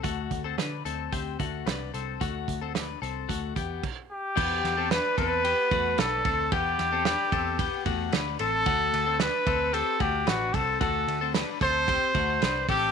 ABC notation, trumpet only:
X:1
M:4/4
L:1/8
Q:1/4=112
K:Em
V:1 name="Trumpet"
z8 | z6 z G- | G2 B B3 A2 | G6 z A- |
A2 B2 A G F A | A2 z c4 G |]